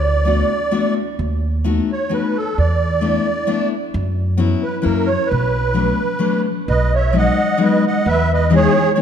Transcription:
0.00 0.41 D2 medium
0.00 0.94 D5 medium
0.25 0.51 A3 medium
0.25 0.51 B3 soft
0.25 0.51 D4 soft
0.25 0.52 F#4 medium
0.71 0.97 A3 medium
0.71 0.97 B3 medium
0.71 0.97 D4 medium
0.71 0.97 F#4 medium
1.19 1.79 D#2 medium
1.64 1.89 A3 medium
1.64 1.90 B3 medium
1.64 1.90 D#4 medium
1.64 1.90 F#4 medium
1.92 2.13 C#5 medium
2.09 2.35 A3 medium
2.09 2.35 B3 soft
2.09 2.35 D#4 soft
2.09 2.35 F#4 medium
2.09 2.37 B4 medium
2.37 2.58 A4 medium
2.58 3.17 E2 medium
2.58 3.69 D5 medium
3.01 3.26 A3 medium
3.01 3.26 B3 medium
3.01 3.27 D4 medium
3.01 3.27 E4 medium
3.47 3.72 A3 medium
3.47 3.72 B3 medium
3.47 3.72 D4 medium
3.47 3.72 E4 medium
3.94 4.53 F#2 medium
4.37 4.63 F#3 medium
4.37 4.63 B3 medium
4.37 4.63 C#4 medium
4.37 4.64 E4 medium
4.63 4.85 B4 medium
4.82 5.15 F#2 medium
4.82 5.07 F#3 medium
4.82 5.08 A#3 soft
4.82 5.08 C#4 medium
4.82 5.08 E4 medium
4.82 5.09 A#4 medium
5.07 5.29 C#5 medium
5.27 6.41 B4 medium
5.31 5.91 B1 medium
5.74 5.99 F#3 medium
5.74 5.99 A3 soft
5.74 6.00 B3 medium
5.74 6.00 D4 medium
6.19 6.45 F#3 medium
6.19 6.46 A3 medium
6.19 6.46 B3 medium
6.19 6.46 D4 medium
6.68 7.28 B1 medium
6.68 6.92 B4 medium
6.68 6.95 D#5 medium
6.94 7.14 C#5 medium
6.94 7.16 E5 medium
7.13 7.38 F#3 medium
7.13 7.39 G#3 medium
7.13 7.39 B3 soft
7.13 7.39 D#4 medium
7.17 7.59 D#5 medium
7.17 7.64 F#5 medium
7.58 7.84 F#3 medium
7.58 7.84 G#3 medium
7.58 7.84 B3 medium
7.58 7.84 D#4 medium
7.63 7.85 B4 medium
7.63 7.85 D#5 medium
7.87 8.06 D#5 medium
7.87 8.08 F#5 medium
8.06 8.65 E2 medium
8.06 8.29 B4 medium
8.06 8.32 E5 medium
8.33 8.52 B4 medium
8.33 8.54 D#5 medium
8.50 8.75 E3 medium
8.50 8.76 G#3 medium
8.50 8.76 B3 medium
8.50 8.76 D#4 medium
8.54 8.90 G#4 medium
8.54 8.92 C#5 loud
8.94 9.02 E3 medium
8.94 9.02 G#3 medium
8.94 9.02 B3 medium
8.94 9.02 D#4 medium
8.94 8.99 C#5 medium

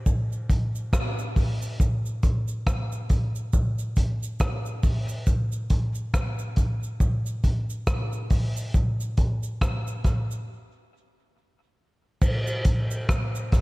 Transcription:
0.06 kick loud
0.06 cabasa medium
0.32 cabasa soft
0.50 kick medium
0.50 closed hi-hat medium
0.50 cabasa soft
0.75 cabasa medium
0.93 kick loud
0.93 cross-stick loud
0.93 cabasa medium
1.19 cabasa soft
1.36 kick medium
1.36 open hi-hat medium
1.36 cabasa soft
1.62 cabasa medium
1.80 kick loud
1.80 hi-hat pedal medium
1.80 cabasa medium
2.06 cabasa medium
2.23 kick medium
2.23 closed hi-hat medium
2.23 cabasa medium
2.48 cabasa medium
2.67 kick loud
2.67 cross-stick loud
2.67 cabasa medium
2.92 cabasa medium
3.09 kick medium
3.09 closed hi-hat medium
3.09 cabasa soft
3.35 cabasa medium
3.53 kick loud
3.53 cabasa medium
3.79 cabasa medium
3.96 kick medium
3.96 closed hi-hat medium
3.96 cabasa soft
4.23 cabasa medium
4.40 kick loud
4.40 cross-stick loud
4.40 cabasa medium
4.66 cabasa soft
4.83 kick medium
4.83 open hi-hat medium
4.83 cabasa soft
5.09 cabasa medium
5.27 kick loud
5.27 hi-hat pedal medium
5.27 cabasa medium
5.52 cabasa medium
5.70 kick medium
5.70 closed hi-hat medium
5.70 cabasa medium
5.95 cabasa medium
6.14 kick loud
6.14 cross-stick loud
6.14 cabasa medium
6.39 cabasa medium
6.56 kick medium
6.56 closed hi-hat medium
6.56 cabasa soft
6.83 cabasa medium
7.00 kick loud
7.00 cabasa medium
7.26 cabasa medium
7.44 kick medium
7.44 closed hi-hat medium
7.44 cabasa soft
7.70 cabasa medium
7.87 kick loud
7.87 cross-stick loud
7.87 cabasa medium
8.13 cabasa soft
8.30 kick medium
8.30 open hi-hat medium
8.30 cabasa soft
8.57 cabasa medium
8.74 kick loud
8.74 hi-hat pedal medium
8.74 cabasa medium
9.00 cabasa medium
9.17 kick medium
9.17 closed hi-hat medium
9.17 cabasa soft
9.43 cabasa medium
9.61 kick loud
9.61 cross-stick loud
9.61 cabasa medium
9.87 cabasa medium
10.04 kick medium
10.04 cross-stick medium
10.04 closed hi-hat medium
10.04 cabasa medium
10.31 cabasa medium
12.21 kick loud
12.21 crash medium
12.21 cabasa medium
12.47 cabasa medium
12.65 kick medium
12.65 closed hi-hat medium
12.65 cabasa medium
12.91 cabasa medium
13.09 kick loud
13.09 cross-stick loud
13.09 cabasa medium
13.35 cabasa medium
13.52 kick medium
13.52 cross-stick medium
13.52 closed hi-hat medium
13.52 cabasa medium

